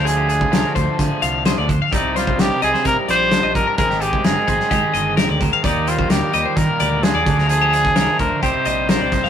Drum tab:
HH |x-x-x-x-x-x-x-x-|x-x-x-x-x-x-x-x-|x-x-x-x-x-x-x-x-|x-x-x-x-x-x-x-x-|
SD |----o-------o---|--o-o--o----o---|-o--o--o----o---|----o-------o--o|
BD |---o--o-o-----o-|o--o----o-----o-|o--o--o-o-----o-|o--o----o-----o-|

HH |x-x-x-x-x-x-x-x-|
SD |---oo-------o-oo|
BD |---o--o-o-----o-|